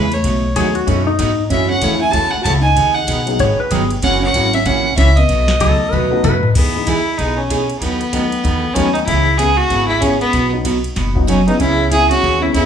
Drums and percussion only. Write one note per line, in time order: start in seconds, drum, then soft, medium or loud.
0.12 ride soft
0.24 kick soft
0.24 ride medium
0.56 kick soft
0.56 hi-hat pedal medium
0.56 ride medium
0.75 ride soft
0.88 kick soft
0.88 ride medium
1.19 kick soft
1.19 hi-hat pedal medium
1.19 ride medium
1.50 kick soft
1.50 ride medium
1.82 kick soft
1.82 hi-hat pedal medium
1.82 ride medium
2.13 kick soft
2.13 ride medium
2.45 kick soft
2.45 hi-hat pedal medium
2.45 ride medium
2.76 kick soft
2.76 ride medium
3.08 kick soft
3.08 hi-hat pedal medium
3.08 ride medium
3.27 ride soft
3.39 kick soft
3.39 ride medium
3.71 kick soft
3.71 hi-hat pedal soft
3.71 ride medium
3.91 ride medium
4.02 kick soft
4.02 ride medium
4.34 kick soft
4.34 hi-hat pedal medium
4.34 ride medium
4.53 ride medium
4.66 kick soft
4.66 ride medium
4.97 kick soft
4.97 hi-hat pedal medium
4.97 ride medium
5.17 ride soft
5.29 kick soft
5.29 ride medium
5.48 snare medium
5.60 kick soft
5.60 hi-hat pedal medium
5.60 ride medium
5.92 high tom soft
6.24 hi-hat pedal medium
6.24 high tom medium
6.43 mid tom medium
6.55 kick medium
6.55 crash medium
6.87 kick soft
6.87 hi-hat pedal soft
6.87 ride medium
7.19 kick soft
7.19 ride medium
7.50 kick soft
7.50 hi-hat pedal medium
7.50 ride medium
7.70 ride soft
7.81 kick soft
7.81 ride medium
8.01 ride soft
8.13 kick soft
8.13 hi-hat pedal medium
8.13 ride medium
8.32 ride soft
8.44 kick soft
8.44 ride medium
8.76 kick soft
8.76 hi-hat pedal medium
8.76 ride medium
8.95 ride soft
9.08 kick soft
9.08 ride medium
9.39 kick soft
9.39 hi-hat pedal medium
9.39 ride medium
9.70 kick soft
9.70 ride medium
10.02 kick soft
10.02 hi-hat pedal medium
10.02 ride medium
10.21 ride soft
10.33 kick soft
10.33 ride medium
10.65 kick soft
10.65 hi-hat pedal medium
10.65 ride medium
10.84 ride soft
10.96 kick soft
10.96 snare soft
10.96 ride medium
11.16 kick medium
11.28 hi-hat pedal medium
11.28 ride medium
11.48 ride soft
11.60 kick soft
11.60 ride medium
11.92 kick soft
11.92 hi-hat pedal medium
11.92 ride medium
12.11 ride medium
12.23 kick soft
12.54 kick soft
12.54 hi-hat pedal medium
12.54 ride medium